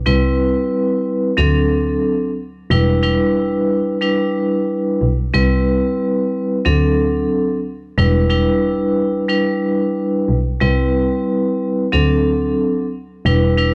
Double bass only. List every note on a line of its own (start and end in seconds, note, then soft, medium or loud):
0.06 0.49 C2 loud
1.38 1.93 D2 loud
2.70 3.13 E1 loud
5.01 5.28 B1 medium
5.34 5.77 C2 loud
6.66 7.21 D2 loud
7.98 8.41 E1 loud
10.28 10.56 B1 medium
10.61 11.04 C2 loud
11.93 12.48 D2 loud
13.25 13.68 E1 loud